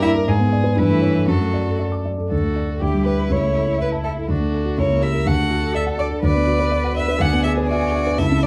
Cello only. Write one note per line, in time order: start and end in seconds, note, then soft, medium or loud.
0.02 0.10 E4 medium
0.77 1.30 E3 medium
1.28 1.80 F#3 medium
2.31 2.78 A4 soft
2.81 3.30 G4 soft
3.31 4.31 E4 soft
4.30 4.80 D4 soft
4.78 5.27 E4 soft
5.27 5.77 F#4 medium
5.75 6.23 A4 medium
6.23 7.22 B4 medium
7.21 7.70 D4 medium
7.71 8.20 F#4 medium
8.19 8.47 E4 medium